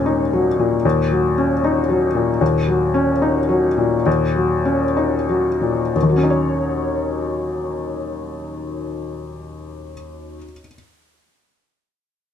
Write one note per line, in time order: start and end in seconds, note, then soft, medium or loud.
0.00 0.80 D#2 soft
0.00 0.59 A#2 soft
0.00 0.22 C#4 soft
0.06 0.48 D#4 soft
0.33 0.74 F#3 soft
0.59 1.00 A#2 soft
0.85 2.37 D#2 soft
1.11 1.52 F#3 soft
1.38 1.79 C#4 soft
1.64 2.05 D#4 soft
1.89 2.30 F#3 soft
2.15 2.57 A#2 soft
2.41 4.02 D#2 soft
2.68 3.11 F#3 soft
2.94 3.38 C#4 soft
3.22 3.66 D#4 soft
3.49 3.94 F#3 soft
3.77 4.23 A#2 soft
4.06 5.91 D#2 soft
4.35 4.84 F#3 soft
4.65 5.15 C#4 soft
4.96 5.48 D#4 soft
5.29 5.82 F#3 soft
5.61 5.95 A#2 soft
5.95 10.38 D#2 soft
6.02 10.44 D#3 soft
6.09 10.51 F#3 soft
6.16 10.58 C#4 soft
6.23 10.65 D#4 soft
6.30 10.72 C#5 soft